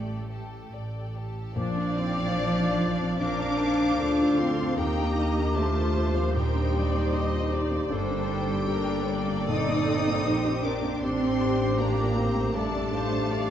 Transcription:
0.00 0.62 A1 soft
0.00 1.53 A2 soft
0.00 1.56 G3 soft
0.00 0.72 A3 soft
0.00 1.14 G4 soft
0.00 0.27 A4 soft
0.00 0.28 D5 soft
0.00 0.27 G5 soft
0.31 0.73 G4 soft
0.31 0.72 A4 soft
0.31 0.72 A5 soft
0.72 1.46 A1 soft
0.72 1.14 A4 soft
0.72 1.15 D5 soft
0.72 1.15 G5 soft
1.14 1.56 G4 soft
1.14 1.56 A4 soft
1.14 1.56 A5 soft
1.55 3.95 A#1 medium
1.55 3.15 A#2 medium
1.55 3.16 F3 medium
1.55 1.94 D4 medium
1.55 3.15 C5 medium
1.55 3.16 D5 medium
1.55 3.15 F5 loud
1.55 3.16 D6 medium
1.76 2.08 D4 soft
1.96 2.36 C4 medium
1.96 2.16 D#4 soft
2.17 2.49 D4 medium
2.37 3.18 D4 medium
2.37 2.69 F4 medium
2.58 2.78 D#4 soft
2.78 3.11 F4 medium
3.00 3.33 C4 soft
3.19 3.53 F3 medium
3.19 4.38 D4 medium
3.19 3.97 D4 medium
3.19 3.99 A#4 medium
3.19 4.74 C5 medium
3.19 4.78 F5 medium
3.19 4.38 D6 loud
3.19 4.74 D6 medium
3.42 3.73 D4 medium
3.62 3.80 D#4 soft
3.80 4.11 D4 soft
3.99 4.78 D2 medium
3.99 4.77 F4 medium
3.99 4.31 F4 medium
3.99 4.78 A4 medium
4.20 4.39 D#4 medium
4.38 4.77 C4 medium
4.38 4.78 C4 medium
4.38 4.70 F4 medium
4.38 4.77 C6 medium
4.59 4.78 C4 soft
4.77 7.87 D#2 medium
4.77 6.31 D#2 medium
4.77 5.56 A#3 medium
4.77 5.55 A#3 medium
4.77 5.55 D#4 medium
4.77 6.32 G4 medium
4.77 5.16 G4 medium
4.77 5.17 G5 medium
4.77 5.55 A#5 loud
4.77 6.32 D6 medium
4.98 5.29 D4 medium
5.17 5.38 D#4 soft
5.17 5.56 G4 medium
5.17 5.56 D#5 medium
5.37 5.69 D4 soft
5.56 6.15 A3 medium
5.56 6.33 F4 medium
5.56 5.89 G4 medium
5.56 6.35 C5 medium
5.56 7.91 C5 medium
5.56 6.15 A5 medium
5.77 5.96 F4 soft
5.96 6.27 G4 medium
6.14 6.34 F3 medium
6.14 6.35 F3 medium
6.14 6.47 A#3 soft
6.14 6.35 F5 medium
6.35 6.67 A#2 medium
6.35 7.53 G3 medium
6.35 7.88 D#4 medium
6.35 7.93 G4 medium
6.35 6.75 A#4 medium
6.35 7.50 G5 medium
6.35 7.88 D6 medium
6.55 6.86 D4 medium
6.75 6.94 D#4 soft
6.75 7.14 D5 medium
6.93 7.25 D4 soft
7.13 7.45 G4 medium
7.13 7.53 D#5 medium
7.33 7.52 F4 medium
7.51 7.83 G4 medium
7.51 7.92 D5 medium
7.71 7.91 A#3 medium
7.90 10.23 G1 medium
7.90 9.45 G2 medium
7.90 9.45 G3 medium
7.90 8.67 A#3 medium
7.90 8.66 D4 medium
7.90 10.75 A4 medium
7.90 8.69 C5 medium
7.90 9.45 G5 loud
7.90 10.71 D6 medium
8.10 8.41 D4 soft
8.29 8.48 D#4 soft
8.48 8.79 D4 medium
8.67 9.07 A#3 medium
8.67 9.47 D4 medium
8.67 8.85 G4 medium
8.67 9.08 A#4 medium
8.86 9.08 G4 soft
9.07 9.48 A#3 medium
9.07 9.40 A4 medium
9.07 10.26 D5 medium
9.27 9.60 A#3 soft
9.48 9.80 A#2 medium
9.48 10.99 C4 medium
9.48 10.64 D#4 medium
9.48 10.26 A4 medium
9.48 10.61 D#6 loud
9.68 9.99 A#3 medium
9.88 10.07 D#4 soft
10.07 10.37 A#3 medium
10.26 11.02 A#1 medium
10.26 11.01 G4 medium
10.26 10.56 A4 medium
10.26 10.64 C5 medium
10.45 10.64 G4 medium
10.63 11.01 D4 medium
10.63 11.02 D4 medium
10.63 10.94 A#4 medium
10.63 11.02 A#4 medium
10.63 11.02 D6 medium
10.82 11.01 A#3 soft
11.01 13.50 A1 medium
11.01 11.77 C4 medium
11.01 11.79 C4 medium
11.01 11.77 D4 medium
11.01 12.51 G4 medium
11.01 12.52 G4 medium
11.01 11.41 A4 medium
11.01 11.78 C6 loud
11.01 12.51 D6 medium
11.21 11.52 D4 soft
11.40 11.60 D#4 soft
11.40 11.80 C5 medium
11.59 11.90 D4 medium
11.78 12.55 A#3 medium
11.78 12.16 D4 medium
11.78 12.09 G4 medium
11.78 12.18 D5 medium
11.78 12.55 A#5 loud
11.98 12.17 F4 soft
12.16 12.55 C4 medium
12.16 12.47 G4 medium
12.16 12.56 C5 medium
12.36 12.66 A3 medium
12.54 12.85 G3 medium
12.54 13.50 A3 medium
12.54 13.28 D4 medium
12.54 13.50 G4 medium
12.54 12.92 A4 medium
12.54 12.92 D5 medium
12.54 13.50 A5 loud
12.54 13.50 D6 medium
12.74 13.04 D4 medium
12.91 13.12 D#4 soft
12.91 13.29 C5 medium
12.91 13.50 F5 medium
13.12 13.42 D4 soft
13.29 13.50 D4 medium
13.29 13.50 G4 medium
13.29 13.50 D5 medium

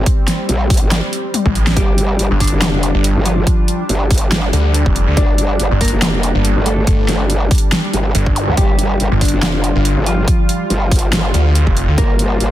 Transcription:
0.00 12.51 G3 medium
0.00 1.75 C4 medium
0.06 kick loud
0.06 closed hi-hat medium
0.28 snare medium
0.28 closed hi-hat medium
0.49 0.80 A#1 loud
0.49 closed hi-hat medium
0.70 kick loud
0.70 closed hi-hat medium
0.70 open hi-hat loud
0.77 closed hi-hat medium
0.82 1.01 G1 loud
0.91 snare loud
0.91 closed hi-hat medium
1.13 closed hi-hat medium
1.34 closed hi-hat medium
1.34 high tom medium
1.46 1.75 A1 loud
1.46 kick medium
1.46 high tom medium
1.55 closed hi-hat medium
1.67 snare medium
1.67 closed hi-hat soft
1.77 2.18 G1 loud
1.77 2.33 G3 medium
1.77 8.56 D4 medium
1.77 2.33 G4 loud
1.77 kick loud
1.77 closed hi-hat medium
1.98 closed hi-hat medium
2.19 2.29 G1 loud
2.19 closed hi-hat medium
2.31 2.50 G1 medium
2.40 3.18 D3 medium
2.40 3.18 D4 loud
2.40 kick medium
2.40 closed hi-hat medium
2.40 open hi-hat loud
2.47 closed hi-hat medium
2.52 2.93 F1 loud
2.62 snare loud
2.62 closed hi-hat medium
2.83 closed hi-hat medium
2.95 3.14 G1 loud
3.04 closed hi-hat medium
3.16 3.45 G1 loud
3.25 3.82 F3 medium
3.25 3.82 F4 loud
3.25 closed hi-hat medium
3.47 kick loud
3.47 closed hi-hat medium
3.68 closed hi-hat medium
3.89 4.52 G1 medium
3.89 closed hi-hat medium
4.11 kick loud
4.11 closed hi-hat medium
4.11 open hi-hat medium
4.18 closed hi-hat medium
4.32 snare loud
4.32 closed hi-hat medium
4.53 4.84 D2 loud
4.53 closed hi-hat medium
4.74 closed hi-hat medium
4.86 5.06 F1 loud
4.86 kick medium
4.96 closed hi-hat medium
5.07 5.15 D2 loud
5.17 5.58 G1 medium
5.17 5.73 D4 medium
5.17 5.73 D5 loud
5.17 kick loud
5.17 closed hi-hat medium
5.38 closed hi-hat medium
5.59 5.69 G1 medium
5.59 closed hi-hat medium
5.71 5.91 G1 loud
5.81 6.58 A#3 medium
5.81 6.58 A#4 loud
5.81 kick medium
5.81 open hi-hat medium
5.85 closed hi-hat medium
5.88 closed hi-hat medium
5.92 6.33 F1 medium
6.02 snare loud
6.02 closed hi-hat medium
6.23 closed hi-hat medium
6.35 6.54 G1 loud
6.45 closed hi-hat medium
6.56 6.86 G1 loud
6.66 7.22 A3 medium
6.66 7.22 A4 loud
6.66 closed hi-hat medium
6.87 7.07 G1 medium
6.87 kick loud
6.87 closed hi-hat medium
7.08 7.49 G1 loud
7.08 snare medium
7.08 closed hi-hat medium
7.30 closed hi-hat medium
7.51 kick loud
7.51 closed hi-hat medium
7.51 open hi-hat medium
7.58 closed hi-hat medium
7.72 snare loud
7.72 closed hi-hat medium
7.93 8.13 G1 loud
7.93 closed hi-hat medium
8.15 8.46 G1 loud
8.15 closed hi-hat medium
8.26 kick medium
8.36 closed hi-hat medium
8.36 zap medium
8.48 8.56 D2 loud
8.57 8.98 G1 medium
8.57 9.14 G3 medium
8.57 12.51 F4 medium
8.57 9.14 G4 loud
8.57 kick loud
8.57 closed hi-hat medium
8.79 closed hi-hat medium
9.00 9.10 G1 loud
9.00 closed hi-hat medium
9.12 9.31 G1 loud
9.21 9.99 D3 medium
9.21 9.99 D4 loud
9.21 kick medium
9.21 closed hi-hat medium
9.21 open hi-hat medium
9.28 closed hi-hat medium
9.33 9.74 F1 loud
9.43 snare loud
9.43 closed hi-hat medium
9.64 closed hi-hat soft
9.75 9.95 G1 loud
9.85 closed hi-hat medium
9.97 10.26 G1 loud
10.06 10.62 F3 medium
10.06 10.62 F4 loud
10.06 closed hi-hat medium
10.28 kick loud
10.28 closed hi-hat medium
10.49 closed hi-hat medium
10.70 11.32 G1 loud
10.70 closed hi-hat medium
10.91 kick loud
10.91 closed hi-hat medium
10.91 open hi-hat medium
10.99 closed hi-hat medium
11.13 snare loud
11.13 closed hi-hat medium
11.34 11.65 D2 loud
11.34 closed hi-hat medium
11.55 closed hi-hat medium
11.67 11.86 F1 medium
11.67 kick medium
11.77 closed hi-hat medium
11.88 11.96 D2 loud
11.98 12.39 G1 loud
11.98 12.51 A#3 medium
11.98 12.51 A#4 loud
11.98 kick loud
11.98 closed hi-hat medium
12.19 closed hi-hat medium
12.40 12.50 G1 loud
12.40 closed hi-hat medium

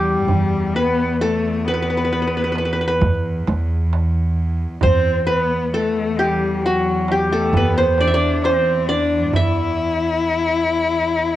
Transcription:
0.00 0.30 E2 medium
0.00 4.83 E2 medium
0.00 0.78 G3 medium
0.00 1.11 G4 medium
0.28 1.86 E3 loud
0.28 darbuka dum medium
0.52 darbuka ka soft
0.75 1.21 B3 medium
0.75 1.68 B4 medium
0.75 darbuka ka soft
1.21 1.67 A3 medium
1.21 2.38 A4 medium
1.65 3.01 B3 medium
1.65 1.73 B4 medium
1.74 1.82 B4 medium
1.83 1.90 B4 medium
1.90 1.97 B4 medium
1.97 2.04 B4 medium
2.05 2.12 B4 soft
2.11 2.22 B4 medium
2.11 darbuka ka soft
2.22 2.27 B4 soft
2.27 2.37 B4 medium
2.37 2.44 B4 medium
2.44 2.52 B4 medium
2.52 2.58 B4 soft
2.52 darbuka tek medium
2.58 2.65 B4 medium
2.65 2.72 B4 medium
2.73 2.81 B4 medium
2.81 2.87 B4 medium
2.88 3.97 B4 medium
3.01 3.40 E2 medium
3.01 darbuka dum medium
3.47 4.64 E2 medium
3.47 darbuka tek medium
3.70 darbuka ka soft
3.93 darbuka tek medium
4.81 6.39 E2 medium
4.81 11.36 E2 medium
4.81 5.25 C4 medium
4.81 5.33 C5 medium
4.81 darbuka dum medium
5.05 darbuka ka soft
5.27 5.70 B3 medium
5.27 6.36 B4 medium
5.27 darbuka ka soft
5.74 6.18 A3 medium
5.74 6.91 A4 medium
6.17 6.64 G3 medium
6.17 6.72 G4 medium
6.62 7.33 F#3 medium
6.62 7.18 F#4 medium
6.62 darbuka ka soft
7.08 8.37 G4 medium
7.08 darbuka tek medium
7.31 7.57 A3 medium
7.31 8.50 A4 medium
7.53 9.34 E2 medium
7.53 8.01 B3 medium
7.53 darbuka dum medium
7.57 7.84 B4 medium
7.78 8.45 C5 medium
7.98 8.13 D4 medium
7.98 8.14 D5 loud
7.98 darbuka tek medium
8.08 8.99 E5 medium
8.13 8.44 D4 medium
8.13 8.88 D5 medium
8.42 8.90 C4 medium
8.42 9.51 C5 medium
8.42 darbuka tek medium
8.88 9.35 D4 medium
8.88 9.88 D5 medium
9.33 10.90 E3 medium
9.33 11.36 E4 loud
9.33 11.36 E5 loud
9.33 darbuka dum loud
9.80 darbuka ka soft

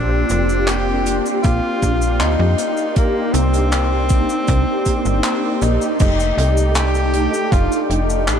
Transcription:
0.00 0.24 A#1 loud
0.00 5.96 A#3 medium
0.00 1.06 C4 medium
0.00 0.69 D4 loud
0.00 1.07 D4 medium
0.00 1.07 F4 medium
0.00 1.08 G4 loud
0.00 2.55 D5 medium
0.00 2.55 G5 medium
0.00 5.96 C6 medium
0.30 1.21 F1 loud
0.30 closed hi-hat medium
0.30 cabasa medium
0.49 cabasa medium
0.68 1.17 G4 loud
0.68 clap loud
0.68 closed hi-hat medium
0.68 cabasa soft
1.06 1.21 C4 medium
1.06 1.21 D4 medium
1.06 1.21 F4 medium
1.06 1.22 G4 medium
1.06 closed hi-hat medium
1.06 cabasa medium
1.26 cabasa medium
1.43 1.61 A#1 medium
1.43 2.22 F4 loud
1.43 kick loud
1.43 closed hi-hat medium
1.43 cabasa soft
1.82 2.22 A#1 medium
1.82 kick medium
1.82 closed hi-hat medium
1.82 cabasa medium
2.02 cabasa medium
2.20 2.37 D2 medium
2.20 2.98 D#4 loud
2.20 clap loud
2.20 closed hi-hat medium
2.20 cabasa soft
2.39 2.55 F2 medium
2.57 2.91 A#3 medium
2.57 2.92 D#4 medium
2.57 2.92 G4 medium
2.57 2.92 D5 medium
2.57 5.97 D5 medium
2.57 closed hi-hat medium
2.57 cabasa medium
2.77 cabasa soft
2.95 4.05 A#3 medium
2.95 3.35 A#3 loud
2.95 4.06 D4 medium
2.95 4.06 D#4 medium
2.95 4.07 G4 loud
2.95 kick loud
2.95 closed hi-hat medium
2.95 cabasa soft
3.34 4.25 C2 medium
3.34 5.24 C4 loud
3.34 closed hi-hat medium
3.34 cabasa medium
3.54 closed hi-hat medium
3.54 cabasa medium
3.72 clap loud
3.72 closed hi-hat medium
3.72 cabasa soft
4.09 4.24 A#3 medium
4.09 4.25 D4 medium
4.09 4.25 D#4 medium
4.09 4.25 G4 loud
4.09 kick loud
4.09 closed hi-hat medium
4.09 cabasa medium
4.29 cabasa medium
4.48 4.65 C2 loud
4.48 kick loud
4.48 closed hi-hat medium
4.48 cabasa soft
4.86 kick medium
4.86 closed hi-hat medium
4.86 cabasa medium
5.05 5.21 G1 medium
5.05 cabasa medium
5.24 5.64 C4 loud
5.24 clap loud
5.24 closed hi-hat medium
5.24 cabasa medium
5.62 5.78 A#1 loud
5.62 5.95 A#3 medium
5.62 6.00 D#4 loud
5.62 5.96 D#4 medium
5.62 5.96 G4 medium
5.62 5.96 D5 medium
5.62 closed hi-hat medium
5.62 cabasa medium
5.82 cabasa medium
5.98 6.32 F1 loud
5.98 7.09 A3 medium
5.98 7.10 D#4 medium
5.98 6.78 D#4 loud
5.98 7.10 G4 loud
5.98 8.39 A4 medium
5.98 7.09 D5 medium
5.98 8.39 G5 medium
5.98 8.39 D6 medium
5.98 kick loud
5.98 closed hi-hat medium
5.98 crash loud
5.98 cabasa medium
6.20 cabasa soft
6.38 7.28 C2 loud
6.38 closed hi-hat medium
6.57 cabasa medium
6.75 7.54 G4 loud
6.75 clap loud
6.75 closed hi-hat medium
6.75 cabasa medium
6.95 cabasa soft
7.13 7.28 A3 medium
7.13 7.28 D4 medium
7.13 7.29 D#4 medium
7.13 7.29 G4 loud
7.13 closed hi-hat medium
7.34 cabasa medium
7.52 7.68 F1 loud
7.52 7.83 F4 loud
7.52 kick loud
7.52 closed hi-hat medium
7.52 cabasa medium
7.72 cabasa soft
7.83 7.92 F4 medium
7.90 8.29 F1 medium
7.90 8.30 D#4 medium
7.90 closed hi-hat medium
8.10 cabasa medium
8.28 8.39 A1 medium
8.28 8.39 D4 loud
8.28 clap loud
8.28 closed hi-hat medium
8.28 cabasa medium

